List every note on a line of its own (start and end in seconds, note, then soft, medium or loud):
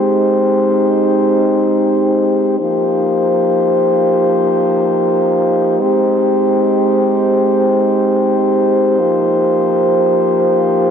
0.00 2.56 G#3 medium
0.00 2.56 C4 medium
0.00 2.56 D#4 medium
0.00 2.55 G4 medium
0.00 2.56 C5 medium
2.59 5.76 F3 medium
2.59 5.76 A#3 medium
2.59 10.90 D#4 medium
2.59 5.76 G4 medium
2.59 5.76 C5 medium
5.79 8.96 G#3 medium
5.79 8.96 C4 medium
5.79 8.96 G4 medium
5.79 10.90 C5 medium
8.99 10.90 F3 medium
8.99 10.90 A#3 medium
8.99 10.90 G4 medium